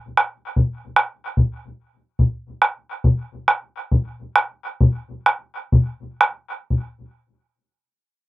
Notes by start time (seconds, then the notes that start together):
0.17 bombo rim
0.56 bombo low
0.96 bombo rim
1.37 bombo low
2.19 bombo low
2.62 bombo rim
3.04 bombo low
3.48 bombo rim
3.92 bombo low
4.36 bombo rim
4.81 bombo low
5.26 bombo rim
5.72 bombo low
6.21 bombo rim
6.70 bombo low